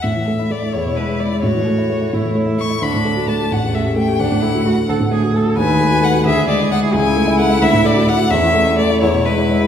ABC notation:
X:1
M:6/8
L:1/16
Q:3/8=87
K:A
V:1 name="Violin"
e4 d2 c2 B2 d2 | c8 z2 c'2 | b4 a2 f2 e2 =g2 | f8 z4 |
g4 f2 e2 d2 f2 | g4 f2 e2 d2 f2 | e4 d2 c2 B4 |]
V:2 name="Cello"
z6 E6 | F6 E6 | D6 C6 | D2 E2 F2 A2 G2 A2 |
B6 G6 | E12 | C6 E6 |]
V:3 name="Grand piano"
A,, E, A, E A, E E,, B,, G, E G, E | A,, E, A, E A, E A,, E, A, E A, E | D,, A,, A, F A, F A,,, E,, A, =G A, G | D,, A,, A, F A, F D,, A,, A, F A, F |
^D,, ^D, A, F A, F =D,, =D, G, E G, E | C,, C, A, E A, E D,, A,, A, F A, F | E,, E, A, E A, E E,, B,, G, E G, E |]